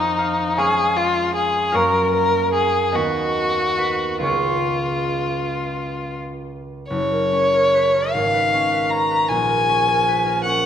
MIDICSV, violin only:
0, 0, Header, 1, 2, 480
1, 0, Start_track
1, 0, Key_signature, 6, "major"
1, 0, Tempo, 772201
1, 1083, Time_signature, 6, 3, 24, 8
1, 1572, Tempo, 858369
1, 2532, Tempo, 884956
1, 3972, Tempo, 821918
1, 4452, Tempo, 781250
1, 6255, End_track
2, 0, Start_track
2, 0, Title_t, "Violin"
2, 0, Program_c, 0, 40
2, 0, Note_on_c, 0, 63, 63
2, 368, Note_on_c, 0, 68, 54
2, 378, Note_off_c, 0, 63, 0
2, 604, Note_on_c, 0, 65, 52
2, 614, Note_off_c, 0, 68, 0
2, 840, Note_off_c, 0, 65, 0
2, 844, Note_on_c, 0, 68, 49
2, 1094, Note_on_c, 0, 70, 56
2, 1103, Note_off_c, 0, 68, 0
2, 1327, Note_off_c, 0, 70, 0
2, 1330, Note_on_c, 0, 70, 55
2, 1572, Note_off_c, 0, 70, 0
2, 1579, Note_on_c, 0, 68, 55
2, 1811, Note_on_c, 0, 66, 53
2, 1819, Note_off_c, 0, 68, 0
2, 2529, Note_off_c, 0, 66, 0
2, 2533, Note_on_c, 0, 65, 43
2, 3594, Note_off_c, 0, 65, 0
2, 3971, Note_on_c, 0, 73, 64
2, 4694, Note_on_c, 0, 77, 63
2, 4703, Note_off_c, 0, 73, 0
2, 5177, Note_on_c, 0, 82, 56
2, 5187, Note_off_c, 0, 77, 0
2, 5415, Note_on_c, 0, 80, 65
2, 5424, Note_off_c, 0, 82, 0
2, 6122, Note_off_c, 0, 80, 0
2, 6125, Note_on_c, 0, 78, 74
2, 6255, Note_off_c, 0, 78, 0
2, 6255, End_track
0, 0, End_of_file